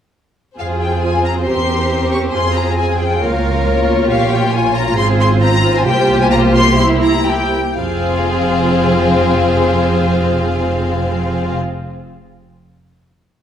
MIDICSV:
0, 0, Header, 1, 6, 480
1, 0, Start_track
1, 0, Key_signature, -4, "minor"
1, 0, Tempo, 450113
1, 633, Time_signature, 4, 2, 24, 8
1, 1586, Tempo, 436681
1, 5426, Tempo, 448430
1, 6866, Tempo, 484653
1, 13897, End_track
2, 0, Start_track
2, 0, Title_t, "Violin section"
2, 0, Program_c, 0, 48
2, 630, Note_on_c, 0, 77, 61
2, 715, Note_off_c, 0, 77, 0
2, 868, Note_on_c, 0, 79, 55
2, 1102, Note_on_c, 0, 80, 59
2, 1106, Note_off_c, 0, 79, 0
2, 1336, Note_on_c, 0, 82, 60
2, 1340, Note_off_c, 0, 80, 0
2, 1422, Note_off_c, 0, 82, 0
2, 1560, Note_on_c, 0, 84, 65
2, 2280, Note_off_c, 0, 84, 0
2, 2283, Note_on_c, 0, 85, 61
2, 2371, Note_off_c, 0, 85, 0
2, 2526, Note_on_c, 0, 84, 70
2, 2756, Note_on_c, 0, 82, 60
2, 2773, Note_off_c, 0, 84, 0
2, 3012, Note_on_c, 0, 80, 60
2, 3013, Note_off_c, 0, 82, 0
2, 3247, Note_on_c, 0, 79, 59
2, 3257, Note_off_c, 0, 80, 0
2, 3496, Note_off_c, 0, 79, 0
2, 3498, Note_on_c, 0, 77, 60
2, 4224, Note_off_c, 0, 77, 0
2, 4462, Note_on_c, 0, 77, 80
2, 4686, Note_off_c, 0, 77, 0
2, 4710, Note_on_c, 0, 79, 71
2, 4932, Note_on_c, 0, 80, 71
2, 4947, Note_off_c, 0, 79, 0
2, 5177, Note_on_c, 0, 82, 77
2, 5178, Note_off_c, 0, 80, 0
2, 5423, Note_off_c, 0, 82, 0
2, 5423, Note_on_c, 0, 84, 91
2, 5508, Note_off_c, 0, 84, 0
2, 5666, Note_on_c, 0, 84, 82
2, 5752, Note_off_c, 0, 84, 0
2, 5905, Note_on_c, 0, 82, 89
2, 6256, Note_off_c, 0, 82, 0
2, 6272, Note_on_c, 0, 80, 75
2, 6363, Note_on_c, 0, 79, 88
2, 6387, Note_off_c, 0, 80, 0
2, 6726, Note_off_c, 0, 79, 0
2, 6741, Note_on_c, 0, 80, 82
2, 6790, Note_off_c, 0, 80, 0
2, 6849, Note_on_c, 0, 82, 85
2, 6929, Note_off_c, 0, 82, 0
2, 7086, Note_on_c, 0, 84, 94
2, 7299, Note_off_c, 0, 84, 0
2, 7311, Note_on_c, 0, 84, 91
2, 7390, Note_off_c, 0, 84, 0
2, 7554, Note_on_c, 0, 82, 78
2, 7797, Note_off_c, 0, 82, 0
2, 7799, Note_on_c, 0, 79, 73
2, 8306, Note_off_c, 0, 79, 0
2, 8306, Note_on_c, 0, 77, 72
2, 12044, Note_off_c, 0, 77, 0
2, 13897, End_track
3, 0, Start_track
3, 0, Title_t, "Violin section"
3, 0, Program_c, 1, 48
3, 629, Note_on_c, 1, 72, 44
3, 630, Note_on_c, 1, 68, 42
3, 1542, Note_off_c, 1, 68, 0
3, 1577, Note_on_c, 1, 70, 42
3, 2500, Note_off_c, 1, 70, 0
3, 2539, Note_on_c, 1, 68, 41
3, 3464, Note_off_c, 1, 68, 0
3, 3466, Note_off_c, 1, 72, 0
3, 3515, Note_on_c, 1, 73, 53
3, 3517, Note_on_c, 1, 65, 56
3, 5384, Note_off_c, 1, 73, 0
3, 5443, Note_on_c, 1, 72, 65
3, 6342, Note_off_c, 1, 65, 0
3, 6394, Note_on_c, 1, 67, 65
3, 8051, Note_off_c, 1, 67, 0
3, 8054, Note_off_c, 1, 72, 0
3, 8307, Note_on_c, 1, 72, 55
3, 8309, Note_on_c, 1, 68, 55
3, 12044, Note_off_c, 1, 72, 0
3, 12046, Note_off_c, 1, 68, 0
3, 13897, End_track
4, 0, Start_track
4, 0, Title_t, "Cello section"
4, 0, Program_c, 2, 48
4, 628, Note_on_c, 2, 68, 45
4, 1078, Note_off_c, 2, 68, 0
4, 1101, Note_on_c, 2, 65, 45
4, 1570, Note_off_c, 2, 65, 0
4, 1580, Note_on_c, 2, 67, 51
4, 2526, Note_off_c, 2, 67, 0
4, 2542, Note_on_c, 2, 68, 50
4, 3007, Note_off_c, 2, 68, 0
4, 3020, Note_on_c, 2, 68, 52
4, 3498, Note_off_c, 2, 68, 0
4, 3511, Note_on_c, 2, 70, 60
4, 4449, Note_off_c, 2, 70, 0
4, 4457, Note_on_c, 2, 67, 59
4, 4929, Note_off_c, 2, 67, 0
4, 4939, Note_on_c, 2, 65, 55
4, 5417, Note_on_c, 2, 68, 67
4, 5423, Note_off_c, 2, 65, 0
4, 5896, Note_on_c, 2, 65, 64
4, 5900, Note_off_c, 2, 68, 0
4, 6369, Note_off_c, 2, 65, 0
4, 6377, Note_on_c, 2, 67, 73
4, 6858, Note_on_c, 2, 65, 66
4, 6863, Note_off_c, 2, 67, 0
4, 7314, Note_on_c, 2, 64, 63
4, 7324, Note_off_c, 2, 65, 0
4, 7792, Note_off_c, 2, 64, 0
4, 7799, Note_on_c, 2, 67, 56
4, 8051, Note_off_c, 2, 67, 0
4, 8304, Note_on_c, 2, 41, 60
4, 12042, Note_off_c, 2, 41, 0
4, 13897, End_track
5, 0, Start_track
5, 0, Title_t, "Viola section"
5, 0, Program_c, 3, 48
5, 622, Note_on_c, 3, 60, 44
5, 623, Note_on_c, 3, 65, 42
5, 1539, Note_off_c, 3, 65, 0
5, 1577, Note_on_c, 3, 67, 42
5, 2500, Note_off_c, 3, 67, 0
5, 2546, Note_on_c, 3, 65, 47
5, 3463, Note_off_c, 3, 60, 0
5, 3508, Note_on_c, 3, 58, 50
5, 5380, Note_off_c, 3, 58, 0
5, 5425, Note_on_c, 3, 60, 59
5, 6338, Note_off_c, 3, 65, 0
5, 6339, Note_off_c, 3, 60, 0
5, 6381, Note_on_c, 3, 65, 63
5, 6383, Note_on_c, 3, 58, 69
5, 7287, Note_off_c, 3, 65, 0
5, 7320, Note_on_c, 3, 64, 67
5, 8042, Note_off_c, 3, 64, 0
5, 8046, Note_off_c, 3, 58, 0
5, 8302, Note_on_c, 3, 60, 57
5, 8302, Note_on_c, 3, 65, 53
5, 12039, Note_off_c, 3, 65, 0
5, 12040, Note_off_c, 3, 60, 0
5, 13897, End_track
6, 0, Start_track
6, 0, Title_t, "Double bass section"
6, 0, Program_c, 4, 48
6, 629, Note_on_c, 4, 41, 44
6, 1542, Note_off_c, 4, 41, 0
6, 1583, Note_on_c, 4, 40, 43
6, 2547, Note_off_c, 4, 40, 0
6, 2552, Note_on_c, 4, 41, 45
6, 3495, Note_off_c, 4, 41, 0
6, 3524, Note_on_c, 4, 37, 53
6, 4470, Note_on_c, 4, 34, 58
6, 4475, Note_off_c, 4, 37, 0
6, 5408, Note_off_c, 4, 34, 0
6, 5427, Note_on_c, 4, 32, 66
6, 6380, Note_on_c, 4, 36, 70
6, 6383, Note_off_c, 4, 32, 0
6, 8085, Note_off_c, 4, 36, 0
6, 8305, Note_on_c, 4, 29, 55
6, 12043, Note_off_c, 4, 29, 0
6, 13897, End_track
0, 0, End_of_file